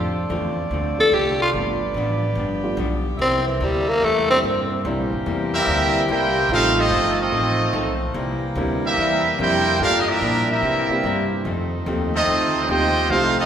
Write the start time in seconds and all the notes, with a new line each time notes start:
Already playing: F2 D3 A3 C4 D4 F4 A4 C5 D5
0.29 E2 D3 A3 C4 F4
0.71 D2 D3 A3 C4 F4
0.98 F3 A3 C4 D4 E4 A4
1.12 C2 D3 A3 C4 F4 G4
1.42 F4
1.52 G1 G2 F3 G3 A3 B3 D4 F4 G4 B4
1.57 D4
1.94 A1 G2 F3 B3 D4
2.35 G1 G2 F3 B3
2.39 D4
2.63 G3 A3 B3 D4 F4
2.77 B1 G2 F3 B3 D4
3.18 C2 C3 G3 A#3 C4 E4 A#4 E5
3.48 E3
3.60 D2 C3 G3 A#3 E4
3.89 A#3
4.02 E2 C3 G3 A3 A#3 E4
4.29 G3 A#3 C4 D4 E4
4.43 G2 C3 G3 A#3 E4
4.85 C2 C3 E3 G3 A#3 C4 D4 E4 G4
4.99 A#1
5.12 G1
5.26 E2 C3 G3 A#3 E4
5.54 G3 A#3 C4 E4 G4 A#4 E5
5.67 D2 C3 G3 A#3
5.71 E4
6.09 C2 C3 G3 A#3 E4 G4 A#4 C5 G5
6.48 A1 D#3 F3 G3 A3 C4 D#4 F4 A4 F5
6.52 D#4 A4 C5
6.78 A3 C4 D#4 F4 A4 D#5
6.90 G1 F3 C4 D#4 A4
7.19 A3 C4 D#4 F4 A4 D#5
7.32 A1 F3 C4 D#4 A4
7.73 B1 F3 C4 D#4 A4
8.14 C2 C3 E3 G3 A#3 E4 G4
8.41 muted upright bass stroke
8.55 D2 C3 G3 A#3 C4 D4 E4
8.85 G3 A#3 C4 E4 G4 A#4 E5
8.97 E2 C3 G3 A#3 E4
9.38 F2 C3 G3 A#3 C4 D4 E4 G4 A#4 C5 G5
9.80 G2 F3 G3 A#3 D4 F4 G4 A4 A#4 F5
10.00 D#5
10.07 F3 A#3 D4 E4 G4 A#4 E5
10.21 G2 A#2 F3 A#3 D4
10.48 G3 A#3 C4 E4 G4 A#4 E5
10.62 C3 E3 G3 A#3 C4 G4
10.66 E4
10.89 A#3 C4 D4 E4 G4, muted upright bass stroke
11.03 G2 C3 G3 A#3 E4
11.43 F2 D#3 A3 D#4 F4
11.48 C4
11.86 D#2 F2 D#3 A3 C4 D#4 F4 G4
12.14 A3 C4 D#4 F4 A4 D#5
12.27 D2 F2 D#3 A3 C4
12.69 D#2 F2 D#3 A3 C4 D#4 F4 G4 C5 D#5 G5
13.10 C2 F2 D#3 A3 C4 D#4 F4 G4 A4 C5 F5
13.37 A3 C4 D#4 F4 A4 D#5, muted upright bass stroke